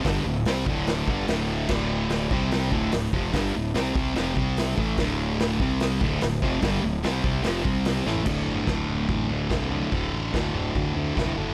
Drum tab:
CC |----------------|x---------------|----------------|----------------|
HH |o---o---o---o---|----o---o---o---|o---o---o---o---|o---o---o---o---|
SD |o---o---o---o---|o---o---o---o---|o---o---o---o---|o---o---o---o---|
FT |----------------|----------------|----------------|----------------|
BD |o-----o---o-----|o-----o---o---o-|o-----o---o---o-|o-----o---o---o-|

CC |----------------|x---------------|----------------|
HH |o---o---o---o---|----------------|----------------|
SD |o---o---o---o-o-|----o-------o---|----o-------o---|
FT |---------------o|o-o-o-o-o-o-o-o-|o-o-o-o-o-o-o-o-|
BD |o-----o---o-----|o---o---o---o---|o---o---o---o---|